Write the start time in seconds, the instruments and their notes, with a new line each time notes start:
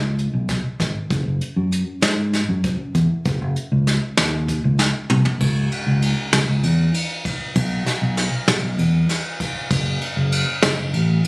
Already playing: fingered electric bass C#2
0.18 closed hi-hat
0.33 fingered electric bass B1
0.49 kick, snare, closed hi-hat
0.80 fingered electric bass G#1, kick, snare, closed hi-hat
1.10 fingered electric bass F#1, kick, closed hi-hat
1.26 fingered electric bass F#1
1.41 closed hi-hat
1.56 fingered electric bass F#2
1.72 closed hi-hat
2.02 fingered electric bass G#2, snare, closed hi-hat
2.33 snare, closed hi-hat
2.49 fingered electric bass F#2
2.64 kick, closed hi-hat
2.95 fingered electric bass E2, kick, closed hi-hat
3.25 fingered electric bass F#1, kick, closed hi-hat
3.41 fingered electric bass F#1
3.56 closed hi-hat
3.72 fingered electric bass C#2
3.87 snare, closed hi-hat
4.17 fingered electric bass D#2, snare, closed hi-hat
4.48 kick, closed hi-hat
4.64 fingered electric bass C#2
4.79 snare
5.10 fingered electric bass C2, mid tom
5.25 floor tom
5.40 fingered electric bass C#2, kick, crash
5.72 ride
5.87 fingered electric bass C#2
6.02 ride
6.33 fingered electric bass C#2, snare, ride
6.48 fingered electric bass C#2
6.63 fingered electric bass E2, ride
6.94 ride
7.25 kick, ride
7.55 fingered electric bass B1, kick, ride
7.86 snare, ride
8.02 fingered electric bass B1
8.17 snare, ride
8.48 fingered electric bass B1, snare, ride
8.63 fingered electric bass B1
8.78 fingered electric bass E2, ride
9.09 snare, ride
9.40 kick, ride
9.70 fingered electric bass F#1, kick, ride
10.01 ride
10.17 fingered electric bass F#1
10.32 ride
10.62 fingered electric bass F#1, snare, ride
10.78 fingered electric bass F#1
10.93 fingered electric bass A1, ride
11.24 ride